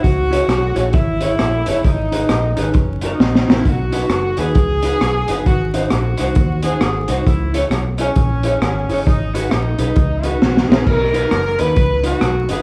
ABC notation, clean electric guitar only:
X:1
M:4/4
L:1/16
Q:"Swing" 1/4=133
K:B
V:1 name="Clean electric guitar"
z2 [EGc] z3 [EGc] z3 [EGc] z3 [EGc] z | z2 [DGB] z3 [DGB] z3 [DFA] z3 [DFA] z | z2 [DFB] z3 [DFB] z3 [DFB] z3 [DFB] z | z2 [DF^B] z3 [DFB] z3 [DFB] z3 [DFB] z |
z2 [EGc] z3 [EGc] z3 [EGc] z3 [EGc] z | z2 [DGB] z3 [DGB] z3 [DGB] z3 [DGB] z | z2 [DFB] z3 [DFB] z3 [DFB] z3 [DFB] z |]